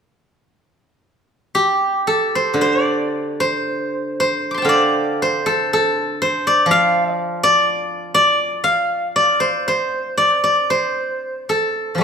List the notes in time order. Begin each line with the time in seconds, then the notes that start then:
1.55 G4
2.07 A4
2.35 C5
2.54 D3
2.61 C5
2.83 D5
3.40 C5
4.20 C5
4.51 C6 D6
4.58 A5
4.62 D3 F5 G5
4.69 D5
5.22 C5
5.46 A4
5.73 A4
6.22 C5
6.47 D5
6.66 F3
6.71 F5
7.15 D5
7.43 D5
8.14 D5
8.64 F5
9.16 D5
9.40 C5
9.68 C5
10.17 D5
10.44 D5
10.70 C5
11.49 A4
11.95 F3 G3
12.01 A3